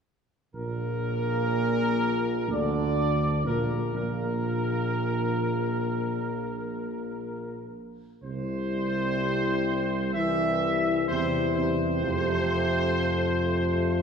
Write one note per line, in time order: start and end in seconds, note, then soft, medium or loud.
0.54 2.51 A#1 medium
0.54 2.45 A#2 medium
0.54 2.46 A#3 medium
0.54 2.46 A#4 medium
2.49 3.48 D2 medium
2.49 3.42 D3 medium
2.49 3.43 D4 medium
2.49 3.47 D5 medium
3.46 3.93 A#1 medium
3.46 3.91 A#2 medium
3.46 3.91 A#3 medium
3.46 3.91 A#4 medium
3.94 7.73 A#1 medium
3.94 7.73 A#2 medium
3.94 7.73 A#3 medium
3.94 7.73 A#4 medium
8.23 11.10 C2 medium
8.23 10.10 C3 medium
8.23 10.11 G3 medium
8.23 10.10 E4 medium
8.23 10.10 C5 loud
10.13 11.05 E3 medium
10.13 11.05 G3 medium
10.13 11.04 E4 medium
10.13 11.04 E5 loud
11.08 12.04 E2 medium
11.08 11.52 C3 medium
11.08 11.98 G3 medium
11.08 11.98 E4 medium
11.08 11.52 C5 medium
11.55 14.02 C3 medium
11.55 14.02 C5 loud
12.02 14.02 F2 medium
12.02 14.02 A3 medium
12.02 14.02 F4 medium